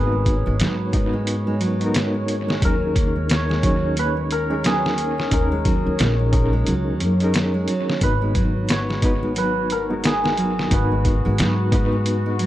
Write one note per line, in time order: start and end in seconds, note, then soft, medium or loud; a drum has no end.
0.00 0.42 G#1 loud
0.00 0.11 B3 medium
0.00 0.93 B3 medium
0.00 0.94 D#4 medium
0.00 0.95 F#4 medium
0.00 2.28 G#4 loud
0.00 1.84 A#4 loud
0.00 0.97 B4 medium
0.00 2.71 B4 medium
0.00 0.46 C#5 loud
0.00 8.03 C#5 medium
0.12 0.44 G#3 medium
0.26 kick medium
0.26 closed hi-hat medium
0.46 0.59 G#1 medium
0.46 0.58 G#3 loud
0.59 2.60 G#2 medium
0.59 0.92 F#3 loud
0.59 snare loud
0.59 closed hi-hat medium
0.93 1.76 B3 medium
0.93 1.12 B3 medium
0.93 1.76 D#4 medium
0.93 1.77 F#4 medium
0.93 1.78 B4 medium
0.93 kick medium
0.93 closed hi-hat medium
1.13 1.45 G#3 medium
1.27 closed hi-hat medium
1.47 1.59 G#3 loud
1.61 1.93 F#3 loud
1.61 closed hi-hat medium
1.81 2.59 B3 medium
1.81 2.59 D#4 medium
1.81 2.60 F#4 medium
1.81 2.60 A#4 loud
1.81 closed hi-hat soft
1.94 2.13 B3 medium
1.94 snare loud
1.94 closed hi-hat medium
2.14 2.46 G#3 medium
2.28 closed hi-hat medium
2.48 2.61 G#3 loud
2.48 snare medium
2.61 5.29 D#2 medium
2.61 2.94 F#3 medium
2.61 3.60 C#4 medium
2.61 3.60 D#4 medium
2.61 3.61 G#4 medium
2.61 4.05 A#4 loud
2.61 3.62 A#4 loud
2.61 kick loud
2.61 closed hi-hat medium
2.96 3.15 A#3 medium
2.96 kick medium
2.96 closed hi-hat medium
3.16 3.47 G#3 medium
3.30 5.87 C#5 loud
3.30 snare loud
3.30 closed hi-hat medium
3.49 3.62 G#3 loud
3.49 snare soft
3.62 3.95 F#3 medium
3.62 4.45 C#4 medium
3.62 4.46 D#4 medium
3.62 4.47 G#4 medium
3.62 4.47 C#5 medium
3.62 kick medium
3.62 closed hi-hat medium
3.97 4.16 A#3 medium
3.97 4.08 B4 loud
3.97 closed hi-hat medium
4.17 4.49 G#3 medium
4.31 5.33 A#4 loud
4.31 closed hi-hat medium
4.50 4.63 G#3 loud
4.50 5.28 C#4 medium
4.50 5.29 D#4 medium
4.50 5.29 G#4 medium
4.50 5.30 A#4 medium
4.64 4.97 F#3 medium
4.64 7.69 G#4 loud
4.64 snare loud
4.64 closed hi-hat medium
4.86 snare medium
4.98 5.17 A#3 medium
4.98 closed hi-hat medium
5.18 5.50 G#3 medium
5.18 snare medium
5.31 5.82 D#2 medium
5.31 6.29 C#4 medium
5.31 6.30 D#4 medium
5.31 6.30 G#4 medium
5.31 8.09 A#4 medium
5.31 kick loud
5.31 closed hi-hat medium
5.35 6.31 A#4 medium
5.52 5.64 G#3 loud
5.65 5.98 F#3 loud
5.65 kick medium
5.65 closed hi-hat medium
5.87 5.98 D#2 medium
5.99 6.67 A#1 loud
5.99 6.18 A#3 medium
5.99 snare loud
5.99 closed hi-hat medium
6.19 6.51 G#3 medium
6.32 7.15 C#4 medium
6.32 7.16 D#4 medium
6.32 7.16 G#4 medium
6.32 kick medium
6.32 closed hi-hat medium
6.36 7.17 A#4 loud
6.53 6.65 G#3 loud
6.67 7.01 C#2 medium
6.67 6.99 F#3 medium
6.67 closed hi-hat medium
7.00 7.65 F#2 medium
7.00 7.19 A#3 medium
7.00 closed hi-hat medium
7.20 7.52 G#3 medium
7.20 7.98 C#4 medium
7.20 7.98 D#4 medium
7.20 7.99 G#4 medium
7.20 closed hi-hat soft
7.24 8.00 A#4 medium
7.34 snare loud
7.34 closed hi-hat medium
7.54 7.66 G#3 loud
7.68 8.00 F#3 loud
7.68 closed hi-hat medium
7.89 snare medium
8.01 10.69 G#1 medium
8.01 8.99 B3 medium
8.01 9.00 D#4 medium
8.01 12.46 F#4 medium
8.01 9.00 F#4 medium
8.01 9.38 B4 loud
8.01 9.01 B4 medium
8.01 kick loud
8.01 closed hi-hat medium
8.22 8.34 G#3 medium
8.35 8.68 F#3 loud
8.35 kick medium
8.35 closed hi-hat medium
8.69 8.88 B3 medium
8.69 11.25 C#5 loud
8.69 snare loud
8.69 closed hi-hat medium
8.89 9.21 G#3 medium
8.89 snare soft
9.02 9.85 B3 medium
9.02 9.85 D#4 medium
9.02 9.86 F#4 medium
9.02 9.87 B4 loud
9.02 kick medium
9.02 closed hi-hat medium
9.23 9.35 G#3 loud
9.36 9.69 F#3 medium
9.36 9.78 B4 loud
9.36 closed hi-hat medium
9.70 9.89 B3 medium
9.70 9.81 A#4 loud
9.70 closed hi-hat medium
9.90 10.22 G#3 medium
9.90 10.68 B3 medium
9.90 10.68 D#4 medium
9.90 10.69 F#4 medium
9.90 10.69 A#4 loud
10.04 12.46 G#4 medium
10.04 snare loud
10.04 closed hi-hat medium
10.24 10.36 G#3 loud
10.24 snare medium
10.37 10.70 F#3 loud
10.37 closed hi-hat medium
10.59 snare medium
10.71 11.21 G#1 loud
10.71 11.69 B3 medium
10.71 10.90 B3 medium
10.71 11.69 D#4 medium
10.71 11.70 F#4 medium
10.71 12.46 B4 medium
10.71 11.70 B4 loud
10.71 kick loud
10.71 closed hi-hat medium
10.92 11.23 G#3 medium
11.05 kick medium
11.05 closed hi-hat medium
11.25 11.37 G#1 medium
11.25 11.37 G#3 loud
11.38 12.46 G#2 medium
11.38 11.71 F#3 loud
11.38 snare loud
11.38 closed hi-hat medium
11.72 12.46 B3 medium
11.72 11.91 B3 medium
11.72 12.46 D#4 medium
11.72 12.46 F#4 medium
11.72 12.46 B4 loud
11.72 kick medium
11.72 closed hi-hat medium
11.92 12.24 G#3 medium
12.06 closed hi-hat medium
12.26 12.38 G#3 loud
12.39 12.46 F#3 loud
12.39 closed hi-hat medium